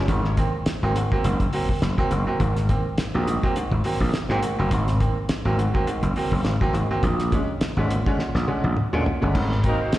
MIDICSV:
0, 0, Header, 1, 6, 480
1, 0, Start_track
1, 0, Tempo, 579151
1, 73, Time_signature, 4, 2, 24, 8
1, 8276, End_track
2, 0, Start_track
2, 0, Title_t, "Horn section"
2, 0, Program_c, 0, 61
2, 7993, Note_on_c, 0, 58, 88
2, 7993, Note_on_c, 0, 70, 96
2, 7994, Note_on_c, 0, 66, 85
2, 7998, Note_on_c, 0, 63, 84
2, 8100, Note_off_c, 0, 58, 0
2, 8100, Note_off_c, 0, 66, 0
2, 8100, Note_off_c, 0, 70, 0
2, 8103, Note_off_c, 0, 63, 0
2, 8123, Note_on_c, 0, 63, 71
2, 8123, Note_on_c, 0, 66, 68
2, 8126, Note_on_c, 0, 60, 71
2, 8126, Note_on_c, 0, 72, 77
2, 8208, Note_off_c, 0, 63, 0
2, 8208, Note_off_c, 0, 66, 0
2, 8210, Note_off_c, 0, 60, 0
2, 8210, Note_off_c, 0, 72, 0
2, 8231, Note_on_c, 0, 56, 73
2, 8231, Note_on_c, 0, 68, 80
2, 8234, Note_on_c, 0, 60, 79
2, 8235, Note_on_c, 0, 63, 75
2, 8276, Note_off_c, 0, 56, 0
2, 8276, Note_off_c, 0, 60, 0
2, 8276, Note_off_c, 0, 63, 0
2, 8276, Note_off_c, 0, 68, 0
2, 8276, End_track
3, 0, Start_track
3, 0, Title_t, "Upright piano"
3, 0, Program_c, 1, 0
3, 73, Note_on_c, 1, 51, 59
3, 75, Note_on_c, 1, 44, 49
3, 178, Note_off_c, 1, 51, 0
3, 179, Note_off_c, 1, 44, 0
3, 316, Note_on_c, 1, 58, 65
3, 319, Note_on_c, 1, 60, 68
3, 420, Note_off_c, 1, 58, 0
3, 421, Note_off_c, 1, 60, 0
3, 687, Note_on_c, 1, 54, 69
3, 690, Note_on_c, 1, 58, 73
3, 692, Note_on_c, 1, 60, 82
3, 770, Note_off_c, 1, 54, 0
3, 771, Note_off_c, 1, 58, 0
3, 772, Note_off_c, 1, 60, 0
3, 795, Note_on_c, 1, 44, 57
3, 795, Note_on_c, 1, 51, 56
3, 899, Note_off_c, 1, 44, 0
3, 899, Note_off_c, 1, 51, 0
3, 928, Note_on_c, 1, 58, 77
3, 929, Note_on_c, 1, 54, 76
3, 933, Note_on_c, 1, 60, 82
3, 1010, Note_off_c, 1, 58, 0
3, 1011, Note_off_c, 1, 54, 0
3, 1013, Note_off_c, 1, 60, 0
3, 1034, Note_on_c, 1, 44, 58
3, 1035, Note_on_c, 1, 51, 54
3, 1138, Note_off_c, 1, 44, 0
3, 1139, Note_off_c, 1, 51, 0
3, 1270, Note_on_c, 1, 54, 76
3, 1273, Note_on_c, 1, 58, 58
3, 1279, Note_on_c, 1, 60, 71
3, 1376, Note_off_c, 1, 54, 0
3, 1378, Note_off_c, 1, 58, 0
3, 1381, Note_off_c, 1, 60, 0
3, 1402, Note_on_c, 1, 60, 26
3, 1404, Note_on_c, 1, 58, 23
3, 1447, Note_off_c, 1, 58, 0
3, 1447, Note_off_c, 1, 60, 0
3, 1637, Note_on_c, 1, 54, 75
3, 1641, Note_on_c, 1, 58, 73
3, 1644, Note_on_c, 1, 60, 91
3, 1724, Note_off_c, 1, 54, 0
3, 1727, Note_off_c, 1, 58, 0
3, 1728, Note_off_c, 1, 60, 0
3, 1746, Note_on_c, 1, 44, 58
3, 1748, Note_on_c, 1, 51, 52
3, 1854, Note_off_c, 1, 44, 0
3, 1855, Note_off_c, 1, 51, 0
3, 1879, Note_on_c, 1, 54, 82
3, 1883, Note_on_c, 1, 58, 67
3, 1883, Note_on_c, 1, 60, 77
3, 1965, Note_off_c, 1, 54, 0
3, 1967, Note_off_c, 1, 58, 0
3, 1967, Note_off_c, 1, 60, 0
3, 1992, Note_on_c, 1, 51, 53
3, 1993, Note_on_c, 1, 44, 49
3, 2097, Note_off_c, 1, 44, 0
3, 2097, Note_off_c, 1, 51, 0
3, 2229, Note_on_c, 1, 58, 63
3, 2236, Note_on_c, 1, 60, 70
3, 2335, Note_off_c, 1, 58, 0
3, 2339, Note_off_c, 1, 60, 0
3, 2605, Note_on_c, 1, 54, 75
3, 2611, Note_on_c, 1, 58, 64
3, 2611, Note_on_c, 1, 60, 75
3, 2688, Note_off_c, 1, 54, 0
3, 2691, Note_off_c, 1, 58, 0
3, 2691, Note_off_c, 1, 60, 0
3, 2711, Note_on_c, 1, 51, 55
3, 2712, Note_on_c, 1, 44, 59
3, 2817, Note_off_c, 1, 44, 0
3, 2817, Note_off_c, 1, 51, 0
3, 2845, Note_on_c, 1, 54, 72
3, 2848, Note_on_c, 1, 58, 73
3, 2849, Note_on_c, 1, 60, 85
3, 2928, Note_off_c, 1, 54, 0
3, 2929, Note_off_c, 1, 58, 0
3, 2930, Note_off_c, 1, 60, 0
3, 2952, Note_on_c, 1, 44, 52
3, 2954, Note_on_c, 1, 51, 56
3, 3057, Note_off_c, 1, 44, 0
3, 3058, Note_off_c, 1, 51, 0
3, 3187, Note_on_c, 1, 54, 71
3, 3191, Note_on_c, 1, 58, 66
3, 3195, Note_on_c, 1, 60, 73
3, 3294, Note_off_c, 1, 54, 0
3, 3296, Note_off_c, 1, 58, 0
3, 3298, Note_off_c, 1, 60, 0
3, 3319, Note_on_c, 1, 60, 25
3, 3320, Note_on_c, 1, 58, 25
3, 3365, Note_off_c, 1, 58, 0
3, 3365, Note_off_c, 1, 60, 0
3, 3562, Note_on_c, 1, 54, 74
3, 3565, Note_on_c, 1, 58, 65
3, 3569, Note_on_c, 1, 60, 93
3, 3646, Note_off_c, 1, 54, 0
3, 3648, Note_off_c, 1, 58, 0
3, 3650, Note_off_c, 1, 60, 0
3, 3668, Note_on_c, 1, 51, 54
3, 3669, Note_on_c, 1, 44, 53
3, 3775, Note_off_c, 1, 44, 0
3, 3775, Note_off_c, 1, 51, 0
3, 3799, Note_on_c, 1, 54, 81
3, 3801, Note_on_c, 1, 58, 76
3, 3806, Note_on_c, 1, 60, 79
3, 3885, Note_off_c, 1, 54, 0
3, 3886, Note_off_c, 1, 58, 0
3, 3888, Note_off_c, 1, 60, 0
3, 3907, Note_on_c, 1, 51, 49
3, 3909, Note_on_c, 1, 44, 55
3, 4014, Note_off_c, 1, 51, 0
3, 4015, Note_off_c, 1, 44, 0
3, 4145, Note_on_c, 1, 58, 65
3, 4150, Note_on_c, 1, 60, 65
3, 4253, Note_off_c, 1, 58, 0
3, 4255, Note_off_c, 1, 60, 0
3, 4519, Note_on_c, 1, 54, 82
3, 4524, Note_on_c, 1, 58, 65
3, 4527, Note_on_c, 1, 60, 83
3, 4605, Note_off_c, 1, 54, 0
3, 4607, Note_off_c, 1, 58, 0
3, 4609, Note_off_c, 1, 60, 0
3, 4628, Note_on_c, 1, 44, 62
3, 4628, Note_on_c, 1, 51, 51
3, 4734, Note_off_c, 1, 44, 0
3, 4734, Note_off_c, 1, 51, 0
3, 4756, Note_on_c, 1, 54, 79
3, 4761, Note_on_c, 1, 58, 72
3, 4762, Note_on_c, 1, 60, 85
3, 4843, Note_off_c, 1, 54, 0
3, 4846, Note_off_c, 1, 58, 0
3, 4846, Note_off_c, 1, 60, 0
3, 4865, Note_on_c, 1, 51, 59
3, 4866, Note_on_c, 1, 44, 58
3, 4973, Note_off_c, 1, 44, 0
3, 4973, Note_off_c, 1, 51, 0
3, 5109, Note_on_c, 1, 54, 66
3, 5111, Note_on_c, 1, 58, 68
3, 5114, Note_on_c, 1, 60, 78
3, 5215, Note_off_c, 1, 54, 0
3, 5216, Note_off_c, 1, 58, 0
3, 5217, Note_off_c, 1, 60, 0
3, 5477, Note_on_c, 1, 54, 82
3, 5480, Note_on_c, 1, 58, 72
3, 5486, Note_on_c, 1, 60, 84
3, 5564, Note_off_c, 1, 54, 0
3, 5565, Note_off_c, 1, 58, 0
3, 5568, Note_off_c, 1, 60, 0
3, 5584, Note_on_c, 1, 51, 55
3, 5586, Note_on_c, 1, 44, 56
3, 5692, Note_off_c, 1, 51, 0
3, 5693, Note_off_c, 1, 44, 0
3, 5723, Note_on_c, 1, 58, 71
3, 5724, Note_on_c, 1, 54, 74
3, 5725, Note_on_c, 1, 60, 86
3, 5806, Note_off_c, 1, 58, 0
3, 5807, Note_off_c, 1, 54, 0
3, 5808, Note_off_c, 1, 60, 0
3, 5837, Note_on_c, 1, 46, 50
3, 5939, Note_off_c, 1, 46, 0
3, 6071, Note_on_c, 1, 56, 72
3, 6076, Note_on_c, 1, 61, 73
3, 6176, Note_off_c, 1, 56, 0
3, 6178, Note_off_c, 1, 61, 0
3, 6445, Note_on_c, 1, 50, 81
3, 6449, Note_on_c, 1, 56, 72
3, 6451, Note_on_c, 1, 61, 79
3, 6527, Note_off_c, 1, 50, 0
3, 6530, Note_off_c, 1, 56, 0
3, 6530, Note_off_c, 1, 61, 0
3, 6553, Note_on_c, 1, 46, 62
3, 6657, Note_off_c, 1, 46, 0
3, 6687, Note_on_c, 1, 50, 73
3, 6687, Note_on_c, 1, 56, 66
3, 6690, Note_on_c, 1, 61, 90
3, 6768, Note_off_c, 1, 50, 0
3, 6769, Note_off_c, 1, 56, 0
3, 6770, Note_off_c, 1, 61, 0
3, 6788, Note_on_c, 1, 46, 57
3, 6894, Note_off_c, 1, 46, 0
3, 7021, Note_on_c, 1, 50, 72
3, 7026, Note_on_c, 1, 56, 71
3, 7028, Note_on_c, 1, 61, 76
3, 7131, Note_off_c, 1, 50, 0
3, 7133, Note_off_c, 1, 56, 0
3, 7134, Note_off_c, 1, 61, 0
3, 7402, Note_on_c, 1, 50, 74
3, 7404, Note_on_c, 1, 56, 71
3, 7404, Note_on_c, 1, 61, 90
3, 7486, Note_off_c, 1, 50, 0
3, 7487, Note_off_c, 1, 56, 0
3, 7487, Note_off_c, 1, 61, 0
3, 7506, Note_on_c, 1, 46, 55
3, 7613, Note_off_c, 1, 46, 0
3, 7637, Note_on_c, 1, 50, 77
3, 7638, Note_on_c, 1, 56, 63
3, 7642, Note_on_c, 1, 61, 79
3, 7724, Note_off_c, 1, 50, 0
3, 7724, Note_off_c, 1, 56, 0
3, 7726, Note_off_c, 1, 61, 0
3, 7746, Note_on_c, 1, 44, 56
3, 7748, Note_on_c, 1, 51, 54
3, 7854, Note_off_c, 1, 44, 0
3, 7854, Note_off_c, 1, 51, 0
3, 7983, Note_on_c, 1, 58, 63
3, 7987, Note_on_c, 1, 60, 71
3, 8092, Note_off_c, 1, 58, 0
3, 8094, Note_off_c, 1, 60, 0
3, 8276, End_track
4, 0, Start_track
4, 0, Title_t, "Slap bass"
4, 0, Program_c, 2, 36
4, 68, Note_on_c, 2, 32, 96
4, 348, Note_off_c, 2, 32, 0
4, 684, Note_on_c, 2, 32, 78
4, 864, Note_off_c, 2, 32, 0
4, 1030, Note_on_c, 2, 30, 91
4, 1210, Note_off_c, 2, 30, 0
4, 1509, Note_on_c, 2, 30, 102
4, 1610, Note_off_c, 2, 30, 0
4, 1751, Note_on_c, 2, 30, 84
4, 1852, Note_off_c, 2, 30, 0
4, 1989, Note_on_c, 2, 32, 89
4, 2269, Note_off_c, 2, 32, 0
4, 2608, Note_on_c, 2, 34, 80
4, 2786, Note_off_c, 2, 34, 0
4, 3079, Note_on_c, 2, 32, 75
4, 3160, Note_off_c, 2, 32, 0
4, 3319, Note_on_c, 2, 34, 78
4, 3400, Note_off_c, 2, 34, 0
4, 3556, Note_on_c, 2, 44, 95
4, 3638, Note_off_c, 2, 44, 0
4, 3806, Note_on_c, 2, 30, 79
4, 3884, Note_off_c, 2, 30, 0
4, 3906, Note_on_c, 2, 32, 89
4, 4187, Note_off_c, 2, 32, 0
4, 4517, Note_on_c, 2, 32, 91
4, 4699, Note_off_c, 2, 32, 0
4, 4995, Note_on_c, 2, 30, 93
4, 5077, Note_off_c, 2, 30, 0
4, 5237, Note_on_c, 2, 30, 89
4, 5318, Note_off_c, 2, 30, 0
4, 5340, Note_on_c, 2, 32, 99
4, 5444, Note_off_c, 2, 32, 0
4, 5579, Note_on_c, 2, 32, 86
4, 5683, Note_off_c, 2, 32, 0
4, 5827, Note_on_c, 2, 34, 94
4, 6107, Note_off_c, 2, 34, 0
4, 6437, Note_on_c, 2, 32, 90
4, 6618, Note_off_c, 2, 32, 0
4, 6917, Note_on_c, 2, 34, 77
4, 6998, Note_off_c, 2, 34, 0
4, 7160, Note_on_c, 2, 34, 75
4, 7240, Note_off_c, 2, 34, 0
4, 7404, Note_on_c, 2, 46, 86
4, 7483, Note_off_c, 2, 46, 0
4, 7648, Note_on_c, 2, 31, 81
4, 7746, Note_off_c, 2, 31, 0
4, 7746, Note_on_c, 2, 32, 102
4, 8027, Note_off_c, 2, 32, 0
4, 8276, End_track
5, 0, Start_track
5, 0, Title_t, "Muted slap bass strokes"
5, 554, Note_on_c, 9, 29, 44
5, 637, Note_off_c, 9, 29, 0
5, 2473, Note_on_c, 9, 29, 48
5, 2556, Note_off_c, 9, 29, 0
5, 4387, Note_on_c, 9, 29, 44
5, 4470, Note_off_c, 9, 29, 0
5, 6302, Note_on_c, 9, 29, 46
5, 6384, Note_off_c, 9, 29, 0
5, 8234, Note_on_c, 9, 29, 43
5, 8276, Note_off_c, 9, 29, 0
5, 8276, End_track
6, 0, Start_track
6, 0, Title_t, "Drums"
6, 68, Note_on_c, 9, 42, 91
6, 69, Note_on_c, 9, 36, 110
6, 151, Note_off_c, 9, 42, 0
6, 152, Note_off_c, 9, 36, 0
6, 203, Note_on_c, 9, 38, 37
6, 286, Note_off_c, 9, 38, 0
6, 309, Note_on_c, 9, 42, 89
6, 312, Note_on_c, 9, 36, 91
6, 392, Note_off_c, 9, 42, 0
6, 395, Note_off_c, 9, 36, 0
6, 546, Note_on_c, 9, 42, 106
6, 550, Note_on_c, 9, 38, 105
6, 629, Note_off_c, 9, 42, 0
6, 632, Note_off_c, 9, 38, 0
6, 793, Note_on_c, 9, 42, 73
6, 876, Note_off_c, 9, 42, 0
6, 926, Note_on_c, 9, 36, 97
6, 1009, Note_off_c, 9, 36, 0
6, 1030, Note_on_c, 9, 42, 81
6, 1113, Note_off_c, 9, 42, 0
6, 1161, Note_on_c, 9, 36, 82
6, 1162, Note_on_c, 9, 42, 53
6, 1244, Note_off_c, 9, 36, 0
6, 1245, Note_off_c, 9, 42, 0
6, 1265, Note_on_c, 9, 46, 81
6, 1348, Note_off_c, 9, 46, 0
6, 1401, Note_on_c, 9, 36, 76
6, 1484, Note_off_c, 9, 36, 0
6, 1509, Note_on_c, 9, 38, 102
6, 1509, Note_on_c, 9, 42, 93
6, 1591, Note_off_c, 9, 38, 0
6, 1592, Note_off_c, 9, 42, 0
6, 1642, Note_on_c, 9, 36, 92
6, 1725, Note_off_c, 9, 36, 0
6, 1748, Note_on_c, 9, 42, 67
6, 1831, Note_off_c, 9, 42, 0
6, 1988, Note_on_c, 9, 42, 81
6, 1989, Note_on_c, 9, 36, 104
6, 2071, Note_off_c, 9, 42, 0
6, 2072, Note_off_c, 9, 36, 0
6, 2125, Note_on_c, 9, 38, 34
6, 2125, Note_on_c, 9, 42, 56
6, 2208, Note_off_c, 9, 38, 0
6, 2208, Note_off_c, 9, 42, 0
6, 2231, Note_on_c, 9, 42, 80
6, 2232, Note_on_c, 9, 36, 92
6, 2313, Note_off_c, 9, 42, 0
6, 2315, Note_off_c, 9, 36, 0
6, 2467, Note_on_c, 9, 42, 95
6, 2470, Note_on_c, 9, 38, 100
6, 2550, Note_off_c, 9, 42, 0
6, 2553, Note_off_c, 9, 38, 0
6, 2714, Note_on_c, 9, 42, 70
6, 2797, Note_off_c, 9, 42, 0
6, 2847, Note_on_c, 9, 36, 92
6, 2929, Note_off_c, 9, 36, 0
6, 2948, Note_on_c, 9, 42, 87
6, 3031, Note_off_c, 9, 42, 0
6, 3079, Note_on_c, 9, 36, 82
6, 3162, Note_off_c, 9, 36, 0
6, 3182, Note_on_c, 9, 46, 77
6, 3265, Note_off_c, 9, 46, 0
6, 3320, Note_on_c, 9, 36, 75
6, 3402, Note_off_c, 9, 36, 0
6, 3428, Note_on_c, 9, 38, 96
6, 3429, Note_on_c, 9, 42, 102
6, 3511, Note_off_c, 9, 38, 0
6, 3512, Note_off_c, 9, 42, 0
6, 3562, Note_on_c, 9, 38, 36
6, 3644, Note_off_c, 9, 38, 0
6, 3668, Note_on_c, 9, 42, 69
6, 3751, Note_off_c, 9, 42, 0
6, 3904, Note_on_c, 9, 42, 86
6, 3906, Note_on_c, 9, 36, 111
6, 3987, Note_off_c, 9, 42, 0
6, 3989, Note_off_c, 9, 36, 0
6, 4043, Note_on_c, 9, 38, 40
6, 4043, Note_on_c, 9, 42, 53
6, 4126, Note_off_c, 9, 38, 0
6, 4126, Note_off_c, 9, 42, 0
6, 4148, Note_on_c, 9, 42, 81
6, 4149, Note_on_c, 9, 36, 96
6, 4231, Note_off_c, 9, 42, 0
6, 4232, Note_off_c, 9, 36, 0
6, 4384, Note_on_c, 9, 42, 97
6, 4387, Note_on_c, 9, 38, 108
6, 4466, Note_off_c, 9, 42, 0
6, 4470, Note_off_c, 9, 38, 0
6, 4632, Note_on_c, 9, 42, 65
6, 4715, Note_off_c, 9, 42, 0
6, 4764, Note_on_c, 9, 36, 100
6, 4847, Note_off_c, 9, 36, 0
6, 4867, Note_on_c, 9, 42, 86
6, 4950, Note_off_c, 9, 42, 0
6, 4996, Note_on_c, 9, 36, 87
6, 4996, Note_on_c, 9, 42, 59
6, 5079, Note_off_c, 9, 36, 0
6, 5079, Note_off_c, 9, 42, 0
6, 5104, Note_on_c, 9, 46, 78
6, 5187, Note_off_c, 9, 46, 0
6, 5237, Note_on_c, 9, 36, 88
6, 5320, Note_off_c, 9, 36, 0
6, 5343, Note_on_c, 9, 38, 92
6, 5344, Note_on_c, 9, 42, 88
6, 5425, Note_off_c, 9, 38, 0
6, 5426, Note_off_c, 9, 42, 0
6, 5479, Note_on_c, 9, 36, 84
6, 5562, Note_off_c, 9, 36, 0
6, 5590, Note_on_c, 9, 42, 70
6, 5673, Note_off_c, 9, 42, 0
6, 5826, Note_on_c, 9, 36, 109
6, 5827, Note_on_c, 9, 42, 87
6, 5908, Note_off_c, 9, 36, 0
6, 5910, Note_off_c, 9, 42, 0
6, 5964, Note_on_c, 9, 38, 36
6, 5964, Note_on_c, 9, 42, 56
6, 6047, Note_off_c, 9, 38, 0
6, 6047, Note_off_c, 9, 42, 0
6, 6068, Note_on_c, 9, 42, 82
6, 6069, Note_on_c, 9, 36, 93
6, 6151, Note_off_c, 9, 42, 0
6, 6152, Note_off_c, 9, 36, 0
6, 6306, Note_on_c, 9, 42, 100
6, 6310, Note_on_c, 9, 38, 106
6, 6389, Note_off_c, 9, 42, 0
6, 6392, Note_off_c, 9, 38, 0
6, 6551, Note_on_c, 9, 42, 73
6, 6634, Note_off_c, 9, 42, 0
6, 6684, Note_on_c, 9, 36, 100
6, 6767, Note_off_c, 9, 36, 0
6, 6787, Note_on_c, 9, 38, 57
6, 6870, Note_off_c, 9, 38, 0
6, 6922, Note_on_c, 9, 38, 57
6, 7005, Note_off_c, 9, 38, 0
6, 7027, Note_on_c, 9, 48, 63
6, 7110, Note_off_c, 9, 48, 0
6, 7161, Note_on_c, 9, 48, 67
6, 7244, Note_off_c, 9, 48, 0
6, 7265, Note_on_c, 9, 47, 86
6, 7348, Note_off_c, 9, 47, 0
6, 7401, Note_on_c, 9, 45, 75
6, 7484, Note_off_c, 9, 45, 0
6, 7511, Note_on_c, 9, 43, 92
6, 7594, Note_off_c, 9, 43, 0
6, 7646, Note_on_c, 9, 43, 80
6, 7728, Note_off_c, 9, 43, 0
6, 7749, Note_on_c, 9, 36, 108
6, 7750, Note_on_c, 9, 49, 74
6, 7832, Note_off_c, 9, 36, 0
6, 7833, Note_off_c, 9, 49, 0
6, 7887, Note_on_c, 9, 38, 36
6, 7970, Note_off_c, 9, 38, 0
6, 7987, Note_on_c, 9, 42, 84
6, 7991, Note_on_c, 9, 36, 92
6, 8070, Note_off_c, 9, 42, 0
6, 8074, Note_off_c, 9, 36, 0
6, 8225, Note_on_c, 9, 42, 98
6, 8229, Note_on_c, 9, 38, 110
6, 8276, Note_off_c, 9, 38, 0
6, 8276, Note_off_c, 9, 42, 0
6, 8276, End_track
0, 0, End_of_file